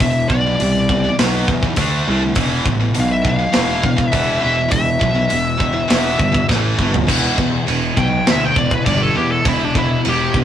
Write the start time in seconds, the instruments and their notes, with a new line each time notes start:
0.00 picked electric bass E1, distorted electric guitar E2 B2, lead electric guitar E5, kick, open hi-hat
0.29 picked electric bass B1, distorted electric guitar E2 B2, lead electric guitar D5, kick
0.47 distorted electric guitar E2 B2
0.60 picked electric bass C2, distorted electric guitar E2 B2, open hi-hat
0.89 distorted electric guitar E2 B2, kick
1.04 distorted electric guitar E2 B2
1.19 picked electric bass B1, distorted electric guitar B2 F#3 B3, snare, open hi-hat
1.48 picked electric bass E2, distorted electric guitar B2 F#3, kick
1.63 distorted electric guitar B2 F#3, kick
1.76 picked electric bass D2, distorted electric guitar D3 A3 D4, kick, open hi-hat
2.08 picked electric bass C2, distorted electric guitar D3 A3 D4
2.22 distorted electric guitar D3 A3
2.35 picked electric bass E1, distorted electric guitar E2 B2 E3, kick, open hi-hat
2.66 picked electric bass A1, distorted electric guitar E2 B2, kick
2.81 distorted electric guitar E2 B2
2.95 picked electric bass B1, distorted electric guitar E2 B2, open hi-hat
3.00 lead electric guitar F5
3.12 lead electric guitar E5
3.25 distorted electric guitar E2 B2, lead electric guitar F5, kick
3.39 distorted electric guitar E2 B2
3.53 picked electric bass E1, distorted electric guitar E2 B2 E3, snare, open hi-hat
3.83 picked electric bass E1, distorted electric guitar E2 B2, kick
3.96 distorted electric guitar E2 B2, kick
4.07 lead electric guitar E5
4.12 picked electric bass E1, distorted electric guitar E2 B2 E3, kick, open hi-hat
4.39 distorted electric guitar E2 B2 E3
4.43 picked electric bass E1, lead electric guitar E5
4.56 distorted electric guitar E2 B2
4.68 picked electric bass E1, distorted electric guitar E2 B2, lead electric guitar E5, kick, open hi-hat
4.99 picked electric bass B1, distorted electric guitar E2 B2, kick
5.15 distorted electric guitar E2 B2
5.29 picked electric bass E1, distorted electric guitar E2 B2, open hi-hat
5.57 distorted electric guitar E2 B2, kick
5.73 distorted electric guitar E2 B2
5.88 picked electric bass E1, distorted electric guitar E2 B2 E3, snare, open hi-hat
6.17 picked electric bass G1, distorted electric guitar E2 B2, kick
6.32 distorted electric guitar E2 B2, kick
6.49 picked electric bass A1, distorted electric guitar A2 E3 A3, kick, snare
6.78 picked electric bass G1, distorted electric guitar A2 E3 A3, kick
6.92 distorted electric guitar A2 E3, floor tom
7.07 picked electric bass E1, distorted electric guitar E2 B2 E3, kick, crash
7.38 distorted electric guitar E2 B2, picked electric bass E2, kick
7.67 picked electric bass E1, distorted electric guitar E2 B2, crash
7.96 picked electric bass B1, distorted electric guitar E2 B2, lead electric guitar G5, kick
8.27 picked electric bass D2, distorted electric guitar E2 B2, lead electric guitar E5, snare, crash
8.45 lead electric guitar G5
8.56 picked electric bass E1, distorted electric guitar E2 B2, lead electric guitar D5, kick
8.71 lead electric guitar B4, kick
8.86 picked electric bass G1, distorted electric guitar E2 B2, lead electric guitar D5, kick, crash
9.02 lead electric guitar A4
9.15 distorted electric guitar E2 B2, picked electric bass E2, lead electric guitar G4
9.32 lead electric guitar A4
9.45 picked electric bass E1, distorted electric guitar E2 B2, lead electric guitar E4, kick, crash
9.64 lead electric guitar D4
9.75 picked electric bass E1, distorted electric guitar E2 B2, lead electric guitar E4, kick
10.05 picked electric bass E1, distorted electric guitar E2 B2, crash
10.09 lead electric guitar G4
10.34 picked electric bass E1, distorted electric guitar E2 B2, kick